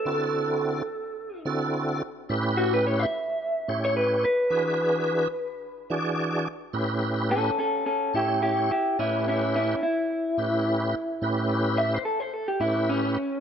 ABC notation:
X:1
M:4/4
L:1/16
Q:"Swing 16ths" 1/4=108
K:Amix
V:1 name="Clean electric guitar"
A8- A2 z6 | z2 F B c e6 c B2 B2- | B8- B2 z6 | z4 [CA]2 [CA]2 [CA]2 [EG]2 [EG]2 [EG]2 |
[CE]2 [CE]2 [CE]2 E8- E2- | E2 z2 e =c A c A G E2 ^C4 |]
V:2 name="Tonewheel organ"
[D,=CEFA]6 z4 [D,CEFA]4 z2 | [A,,CEGB]6 z4 [A,,CEGc]4 z2 | [E,DF^GB]6 z4 [E,DFGd]4 z2 | [A,,CEGB]6 z4 [A,,CEGc]4 z2 |
[A,,CEGB]6 z4 [A,,CEGB]4 z2 | [A,,CEGB]6 z4 [A,,CEGB]4 z2 |]